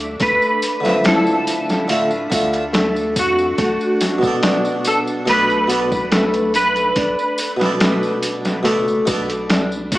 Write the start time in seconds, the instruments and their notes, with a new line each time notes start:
Already playing: sub bass D2, synth drone D4, clean electric guitar D5
0.00 closed hi-hat
0.20 sub bass D2, nylon-string guitar A3, clean electric guitar B4, kick, open hi-hat, tambourine
0.42 tambourine
0.62 open hi-hat, tambourine
0.80 harpsichord D3 A3
0.85 harpsichord F3, snare, tambourine
0.89 harpsichord E5
1.04 nylon-string guitar E4, clean electric guitar A4, snare, open hi-hat, tambourine
1.27 tambourine
1.47 open hi-hat, tambourine
1.69 snare, tambourine
1.88 sub bass D1, harpsichord D3 A3 F4, nylon-string guitar A3, open hi-hat, tambourine
1.92 harpsichord E5
2.11 tambourine
2.30 sub bass D2, harpsichord D3 A3 F4, kick, open hi-hat, tambourine
2.35 harpsichord E5
2.53 closed hi-hat, tambourine
2.73 nylon-string guitar A3, snare, open hi-hat, tambourine
2.96 tambourine
3.16 sub bass F2, clean electric guitar F#4, kick, open hi-hat, tambourine
3.38 tambourine
3.58 sub bass B1, nylon-string guitar A3, kick, open hi-hat, tambourine
3.81 tambourine
4.00 snare, open hi-hat, tambourine
4.18 harpsichord B2 B3
4.23 harpsichord A4, kick, tambourine
4.27 harpsichord D5
4.43 nylon-string guitar D4, snare, open hi-hat, tambourine
4.65 tambourine
4.84 clean electric guitar A4, open hi-hat, tambourine
5.07 tambourine
5.26 sub bass B1, harpsichord B2 B3 A4, nylon-string guitar A3, clean electric guitar B4, open hi-hat, tambourine
5.30 harpsichord D5
5.50 tambourine
5.67 harpsichord B2 B3 A4, open hi-hat, tambourine
5.72 harpsichord D5
5.92 kick, tambourine
6.12 nylon-string guitar A3, snare, open hi-hat, tambourine
6.34 closed hi-hat, tambourine
6.54 clean electric guitar B4, open hi-hat, tambourine
6.76 closed hi-hat, tambourine
6.96 sub bass B1, nylon-string guitar D4, kick, open hi-hat, tambourine
7.19 tambourine
7.38 open hi-hat, tambourine
7.57 harpsichord B2 B3
7.61 harpsichord A4, snare, tambourine
7.65 harpsichord D5
7.80 nylon-string guitar A3, snare, open hi-hat, tambourine
8.03 tambourine
8.23 open hi-hat, tambourine
8.45 snare, tambourine
8.63 sub bass F#1, harpsichord B2 B3 A4, nylon-string guitar A3, open hi-hat, tambourine
8.67 harpsichord D5
8.88 tambourine
9.05 sub bass B1, harpsichord B2 B3 A4, kick, open hi-hat, tambourine
9.10 harpsichord D5
9.30 closed hi-hat, tambourine
9.49 nylon-string guitar D4, snare, open hi-hat, tambourine
9.72 tambourine
9.92 clean electric guitar G4, kick, open hi-hat, tambourine